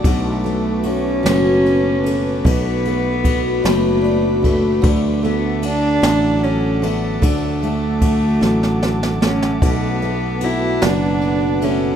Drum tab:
RD |x-x-x-x-x-x-|x-x-x-x-x-x-|x-x-x-x-x-x-|x-x-x-------|
SD |------o-----|------o-----|------o-----|------oooooo|
BD |o-----------|o---o-----o-|o-----------|o---o-------|

RD |x-x-x-x-x-x-|
SD |------o-----|
BD |o-----------|